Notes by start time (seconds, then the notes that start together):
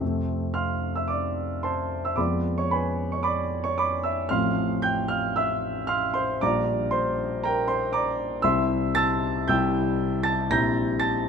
0.01 F2 C3 A3 C4
0.54 F5 C6 F6
0.96 E5 E6
1.08 D5 D6
1.63 C5 A5 C6
2.05 E5 E6
2.16 F2 F3 G#3 B3 D5 B5 D6
2.58 C#5 C#6
2.71 B4 G#5 B5
3.12 C#5 C#6
3.23 D5 B5 D6
3.64 C#5 C#6
3.78 D5 B5 D6
4.03 E5 E6
4.29 A1 F3 A3 C4 F5 C6 F6
4.82 G5 G6
5.08 F5 F6
5.36 E5 E6
5.87 F5 C6 F6
6.14 C5 C6
6.41 A#1 G3 D4 F4 D5 A#5 D6
6.91 C5 C6
7.44 A#4 G5 A#5
7.68 C5 C6
7.93 D5 A#5 D6
8.42 C2 G3 C4 E4 E5 C6 E6
8.95 A5 E6 A6
9.48 C2 G3 C4 E4 G5 E6 G6
10.23 A5 A6
10.51 A#1 G3 C4 E4 A#5 G6 A#6
11.00 A5 A6